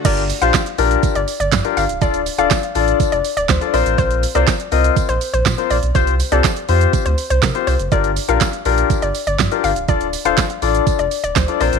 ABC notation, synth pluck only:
X:1
M:4/4
L:1/16
Q:1/4=122
K:Gm
V:1 name="Synth pluck"
d z2 f3 z3 d z d z2 f z | d z2 f3 z3 d z d c z d z | c z2 d3 z3 c z c z2 d z | c z2 d3 z3 c z c B z c z |
d z2 f3 z3 d z d z2 f z | d z2 f3 z3 d z d c z d z |]